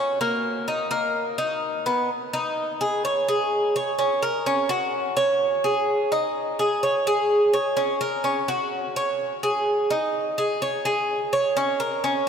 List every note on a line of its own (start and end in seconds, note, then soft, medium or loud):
0.00 0.19 C#4 medium
0.21 0.66 A#3 medium
0.68 0.91 D#4 medium
0.91 1.37 A#3 medium
1.38 1.84 D#4 medium
1.86 2.09 B3 medium
2.33 2.79 D#4 medium
2.81 3.04 G#4 medium
3.05 3.27 C#5 medium
3.28 3.74 G#4 medium
3.76 3.98 C#5 medium
3.99 4.22 C#4 medium
4.22 4.45 A#4 medium
4.46 4.69 C#4 medium
4.69 5.16 F#4 medium
5.17 5.63 C#5 medium
5.64 6.10 G#4 medium
6.12 6.58 D#4 medium
6.59 6.82 G#4 medium
6.83 7.06 C#5 medium
7.07 7.53 G#4 medium
7.53 7.77 C#5 medium
7.77 8.00 C#4 medium
8.01 8.24 A#4 medium
8.24 8.47 C#4 medium
8.48 8.94 F#4 medium
8.96 9.42 C#5 medium
9.43 9.89 G#4 medium
9.91 10.37 D#4 medium
10.38 10.61 G#4 medium
10.62 10.85 C#5 medium
10.85 11.31 G#4 medium
11.33 11.56 C#5 medium
11.57 11.80 C#4 medium
11.80 12.03 A#4 medium
12.04 12.27 C#4 medium